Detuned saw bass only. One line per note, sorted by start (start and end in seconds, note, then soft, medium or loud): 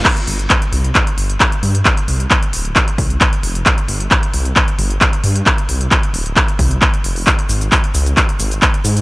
0.28 0.46 G1 loud
0.73 0.91 C2 loud
1.18 1.36 G1 medium
1.63 1.81 G2 medium
2.08 2.26 C2 medium
2.53 2.72 D1 loud
2.98 3.17 C2 loud
3.43 3.62 F1 medium
3.88 4.07 G1 loud
4.34 4.52 C2 loud
4.79 4.97 G1 loud
5.24 5.42 G2 loud
5.69 5.87 C2 medium
6.14 6.32 D1 loud
6.59 6.78 C2 loud
7.04 7.23 F1 medium
7.49 7.68 G#1 medium
7.94 8.13 C#2 loud
8.40 8.58 G#1 medium
8.85 9.02 G#2 loud